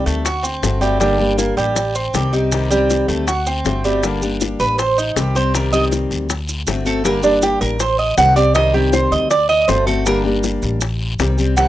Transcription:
Already playing: steel-string acoustic guitar D#3 G3 C4 G4
0.06 upright bass D2, cuban tres A3, high bongo, short guiro, maracas
0.25 cuban tres F#4, muted steel-string acoustic guitar stroke, high bongo, long guiro, maracas
0.43 cuban tres C4, high bongo, maracas
0.63 upright bass G1, steel-string acoustic guitar D3 A3 C4 F#4, high bongo, low bongo, short guiro, maracas
0.81 cuban tres G3, steel-string acoustic guitar A3 C4 F#4, short guiro, maracas
1.00 steel-string acoustic guitar D3 G3 A#3 D4 G4, cuban tres G3, high bongo, long guiro, maracas
1.19 steel-string acoustic guitar G3 A#3 D4 G4
1.38 cuban tres A#3, high bongo, short guiro, maracas
1.57 upright bass A1, cuban tres G3, short guiro, maracas
1.76 muted steel-string acoustic guitar stroke, high bongo, long guiro, maracas
1.95 cuban tres C4, maracas
2.14 upright bass C2, steel-string acoustic guitar D#3 G3 C4 G4, cuban tres G4, high bongo, low bongo, short guiro, maracas
2.33 steel-string acoustic guitar G3 C4 G4, cuban tres D#4, short guiro, maracas
2.51 steel-string acoustic guitar C3 D#3 G3 C4 G4, high bongo, long guiro, maracas
2.71 steel-string acoustic guitar D#3 G3 C4 G4, cuban tres G3, high bongo, maracas
2.90 high bongo, short guiro, maracas
3.08 upright bass D2, cuban tres A3, high bongo, short guiro, maracas
3.27 cuban tres F#4, muted steel-string acoustic guitar stroke, high bongo, long guiro, maracas
3.47 cuban tres C4, high bongo, maracas
3.65 upright bass G1, steel-string acoustic guitar D3 A3 C4 F#4, high bongo, low bongo, short guiro, maracas
3.84 cuban tres G3, steel-string acoustic guitar A3 C4 F#4, short guiro, maracas
4.03 steel-string acoustic guitar D3 G3 A#3 D4 G4, high bongo, long guiro, maracas
4.22 steel-string acoustic guitar G3 A#3 D4 G4, maracas
4.41 high bongo, short guiro, maracas
4.60 upright bass A1, cuban tres B4, short guiro, maracas
4.78 cuban tres C5, muted steel-string acoustic guitar stroke, high bongo, long guiro, maracas
4.98 cuban tres D#4, maracas
5.16 upright bass C2, steel-string acoustic guitar D#3 G3 C4 G4, cuban tres G4, high bongo, low bongo, short guiro, maracas
5.35 steel-string acoustic guitar G3 C4 G4, cuban tres C5, short guiro, maracas
5.54 steel-string acoustic guitar C3 D#3 G3 C4 G4, cuban tres A#4, high bongo, long guiro, maracas
5.73 steel-string acoustic guitar D#3 G3 C4 G4, cuban tres D#5, high bongo, maracas
5.91 high bongo, short guiro, maracas
6.10 upright bass D2, high bongo, short guiro, maracas
6.29 muted steel-string acoustic guitar stroke, high bongo, long guiro, maracas
6.49 high bongo, maracas
6.67 upright bass G1, steel-string acoustic guitar D3 A3 C4 F#4, high bongo, low bongo, short guiro, maracas
6.85 steel-string acoustic guitar A3 C4 F#4, cuban tres A4, short guiro, maracas
7.03 steel-string acoustic guitar D3 G3 A#3 D4 G4, cuban tres A#4, high bongo, long guiro, maracas
7.22 steel-string acoustic guitar G3 A#3 D4 G4, cuban tres D4, maracas
7.42 cuban tres G4, high bongo, short guiro, maracas
7.61 upright bass A1, cuban tres A#4, short guiro, maracas
7.79 cuban tres C5, muted steel-string acoustic guitar stroke, high bongo, long guiro, maracas
7.99 cuban tres D#5
8.17 upright bass C2, steel-string acoustic guitar D#3 G3 C4 G4, cuban tres F#5, high bongo, low bongo, short guiro, maracas
8.36 steel-string acoustic guitar G3 C4 G4, cuban tres D5, short guiro, maracas
8.54 steel-string acoustic guitar C3 D#3 G3 C4 G4, cuban tres D#5, high bongo, long guiro, maracas
8.73 steel-string acoustic guitar D#3 G3 C4 G4, cuban tres G4, high bongo
8.93 cuban tres C5, high bongo, short guiro, maracas
9.11 upright bass D2, cuban tres D#5, high bongo, short guiro, maracas
9.30 cuban tres D5, muted steel-string acoustic guitar stroke, high bongo, long guiro, maracas
9.49 cuban tres D#5, high bongo
9.68 upright bass G1, steel-string acoustic guitar D3 A3 C4 F#4, cuban tres C5, high bongo, low bongo, short guiro, maracas
9.86 steel-string acoustic guitar A3 C4 F#4, cuban tres A4, short guiro, maracas
10.06 steel-string acoustic guitar D3 G3 A#3 D4 G4, cuban tres A#4, high bongo, long guiro, maracas
10.24 steel-string acoustic guitar G3 A#3 D4 G4
10.43 high bongo, short guiro, maracas
10.62 upright bass A1, short guiro, maracas
10.81 muted steel-string acoustic guitar stroke, high bongo, long guiro, maracas
11.19 upright bass C2, steel-string acoustic guitar D#3 G3 C4 G4, high bongo, low bongo, short guiro, maracas
11.38 steel-string acoustic guitar G3 C4 G4, short guiro, maracas
11.56 steel-string acoustic guitar C3 D#3 G3 C4 G4, cuban tres F#5, high bongo, long guiro, maracas

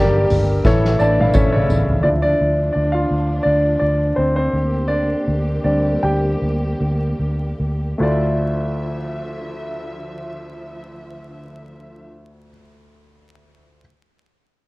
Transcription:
Already playing: fingered electric bass G1, grand piano G2 D3 G4 A#4 D5, string section D3 A#3 G4
0.30 fingered electric bass G1, floor tom, hi-hat pedal, open hi-hat, tambourine
0.65 fingered electric bass A1, grand piano A2 E3 E4 A4 C#5, string section E3 A3 E4, kick, snare, tambourine
0.84 snare
0.99 fingered electric bass A1, grand piano D4 D5 A5, tambourine
1.20 grand piano F5, high tom
1.34 fingered electric bass A1, grand piano C#4 E4 A4 C#5 E5, kick, mid tom, tambourine
1.53 grand piano C#3 C#5 D5
1.70 fingered electric bass A1, floor tom, tambourine
1.90 floor tom
2.03 fingered electric bass D2, string section D3 F3 D4, grand piano F3 D4 E4 D5
2.22 grand piano D4 D5
2.41 fingered electric bass D2
2.73 fingered electric bass D2, grand piano D4 D5
2.92 grand piano F4 F5
3.11 fingered electric bass D2
3.43 fingered electric bass D2, grand piano D4 D5
3.79 fingered electric bass D2, grand piano D4 D5
4.16 fingered electric bass D2, grand piano C4 C5
4.36 grand piano C4 C5
4.53 fingered electric bass D2, string section A#3 G4
4.88 grand piano D4 D5
5.27 fingered electric bass D2
5.64 fingered electric bass D2, grand piano G3 C4 D4 D5
6.03 fingered electric bass D2, grand piano G4 G5
6.42 fingered electric bass D2
6.80 fingered electric bass D2
7.19 fingered electric bass D2
7.60 fingered electric bass D2
7.98 grand piano D2 A3 E4 F4, fingered electric bass D2, string section D3 F3 E5
8.03 grand piano D5

